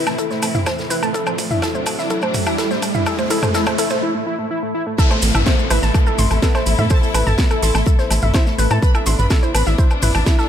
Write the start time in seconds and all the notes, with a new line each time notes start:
Already playing: C3 E3 A3 C4 E4, riser
0.06 A3 A5, snare, low woodblock, maracas
0.18 E4 A4, kick, closed hi-hat, maracas
0.31 A3 C5, snare, maracas
0.42 A3, closed hi-hat, open hi-hat, low woodblock, maracas
0.55 E4 E5, mid tom, maracas
0.66 A3 C5, kick, snare, closed hi-hat, low woodblock, maracas
0.78 A3, snare, maracas
0.90 E4 B4, closed hi-hat, open hi-hat, maracas
1.03 A3 A5, low woodblock, maracas
1.14 D4 E4 A4, kick, closed hi-hat, maracas
1.27 A3 C5, low woodblock, maracas
1.38 A3, kick, closed hi-hat, open hi-hat, maracas
1.51 E4 E5, mid tom, maracas
1.62 E4 A4, kick, snare, closed hi-hat, low woodblock, maracas
1.75 A3 C5, maracas
1.86 A3, kick, closed hi-hat, open hi-hat, low woodblock, maracas
1.99 E4 E5, snare, maracas
2.10 E4 A4, kick, closed hi-hat, maracas
2.22 A3 C5, low woodblock, maracas
2.34 A3, kick, closed hi-hat, mid tom, open hi-hat, maracas
2.46 E4 E5, closed hi-hat, low woodblock, maracas
2.58 E4 A4, kick, snare, closed hi-hat, maracas
2.71 A3 C5, snare, maracas
2.82 A3, kick, closed hi-hat, open hi-hat, low woodblock, maracas
2.94 E4 E5, mid tom, maracas
3.06 E4 A4, kick, open hi-hat, low woodblock, maracas
3.19 A3 C5, kick, maracas
3.30 E4 A4, kick, closed hi-hat, open hi-hat, maracas
3.42 A3 C5, kick, mid tom, low woodblock, maracas
3.54 E4 A4, kick, snare, closed hi-hat, maracas
3.66 A3 C5, kick, closed hi-hat, low woodblock, maracas
3.78 E4 A4, kick, closed hi-hat, open hi-hat, maracas
3.90 A3 C5, kick, snare, maracas
4.03 E4
4.15 A3
4.27 E4
4.39 A3
4.51 E4
4.63 A3
4.74 E4
4.87 A3
4.98 C3 E3 A3 B3 E4 A4 E5 A5, kick, closed hi-hat, downlifter, maracas
5.11 A3 A4 C5 C6, low woodblock, maracas
5.22 A1 A3 A4, closed hi-hat, open hi-hat, maracas
5.34 A1 E4 E5 E6, mid tom, low woodblock, maracas
5.46 A3 A4 C5 C6, kick, snare, closed hi-hat, maracas
5.59 A3 A4, maracas
5.70 A1 E4 B4 E5 B5, closed hi-hat, open hi-hat, low woodblock, maracas
5.83 A1 A3 A4 A5 A6, snare, maracas
5.94 A3 A4, kick, closed hi-hat, low woodblock, maracas
6.07 A4 A5, maracas
6.18 A1 A3 A4 C6, closed hi-hat, mid tom, open hi-hat, maracas
6.31 A1 A3 A4, closed hi-hat, low woodblock, maracas
6.42 B3 A4 B4 A5, kick, snare, closed hi-hat, maracas
6.55 A3 A4 C5 C6, snare, low woodblock, maracas
6.66 A1 A3 A4, closed hi-hat, open hi-hat, maracas
6.78 A2 A3 A4 E5 E6, mid tom, maracas
6.90 A4 C5 A5 C6, kick, open hi-hat, low woodblock, maracas
7.02 A3 A4, maracas
7.14 A1 A3 A4 B4 B5, closed hi-hat, open hi-hat, low woodblock, maracas
7.27 A1 A4 A5 A6, mid tom, maracas
7.38 A3 A4, kick, snare, closed hi-hat, maracas
7.50 A3 A4 A5, closed hi-hat, low woodblock, maracas
7.62 A1 A4 A5 C6, closed hi-hat, open hi-hat, maracas
7.75 A1 A3 A4, snare, low woodblock, maracas
7.86 A3 A4 A5, kick, closed hi-hat, maracas
7.99 C5 C6, snare, maracas
8.10 A1 A3 A4, closed hi-hat, open hi-hat, low woodblock, maracas
8.22 A1 A3 A4 E5 E6, mid tom, maracas
8.34 E4 C5 E5 C6, kick, snare, closed hi-hat, low woodblock, maracas
8.46 A3 A4, snare, maracas
8.58 A1 A3 A4 B4 B5, closed hi-hat, open hi-hat, maracas
8.71 A2 A3 A4 A5 A6, low woodblock, maracas
8.82 D4 B4 B5, kick, closed hi-hat, maracas
8.94 E4 A4 E5 A5, low woodblock, maracas
9.06 A1 E4 E5 C6, closed hi-hat, open hi-hat, maracas
9.19 A1 B4 B5, mid tom, maracas
9.30 E4 A4 E5 A5, kick, snare, closed hi-hat, low woodblock, maracas
9.43 E4 C5 E5 C6, maracas
9.54 A1 B4 B5, closed hi-hat, open hi-hat, low woodblock, maracas
9.66 A1 E4 E5 E6, snare, maracas
9.78 E4 C5 E5 C6, kick, closed hi-hat, maracas
9.91 low woodblock, maracas
10.02 A1 E4 B4 E5 B5, closed hi-hat, mid tom, open hi-hat, maracas
10.14 A1 E4 E5 A5 A6, closed hi-hat, low woodblock, maracas
10.26 E4 E5, kick, snare, closed hi-hat, maracas
10.38 E4 A4 E5 A5, snare, maracas